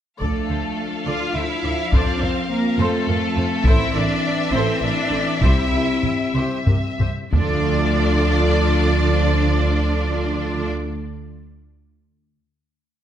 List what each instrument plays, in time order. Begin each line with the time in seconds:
0.20 double bass section D2, french horn section F3 D4, cello section A3, viola section A4 D5, violin section A4 F5, taiko
0.50 double bass section D2, viola section A4 C5
1.06 double bass section D2, cello section F4, viola section A4 D5, violin section F5
1.34 double bass section D2, cello section E4, viola section A4 C5, violin section E5
1.63 double bass section D2, viola section A4 D5
1.92 double bass section F2, french horn section C4, cello section D4, viola section A4 C5, violin section D5, taiko
2.21 double bass section F2, cello section C4, viola section A4 A#4, violin section C5
2.50 cello section A#3, violin section A#4
2.78 double bass section F2, cello section A3, violin section A4, viola section A4 C5
3.07 double bass section F2, viola section A4 A#4
3.36 double bass section F2, viola section A4 C5
3.63 double bass section A1, french horn section E3, cello section E4, viola section A4 C5, violin section E5, taiko
3.94 double bass section A1, cello section D4, viola section A4 A#4, violin section D5
4.52 double bass section A1, cello section C4, viola section A4 C5, violin section C5
4.82 double bass section A1, cello section D4, viola section A4 A#4, violin section D5
5.11 double bass section A1, viola section A4 C5
5.41 double bass section C2, french horn section G3 C4, cello section E4, viola section G4 C5, violin section E5, taiko
5.72 double bass section C2, viola section G4 A#4
6.03 taiko low-mid
6.34 double bass section C2, viola section G4 C5
6.67 double bass section C2, viola section G4 A#4, taiko low-mid
7.00 double bass section C2, viola section G4 C5, taiko low-mid
7.33 double bass section D2, french horn section F3 D4, cello section D4, viola section F4 A4, violin section D5, taiko low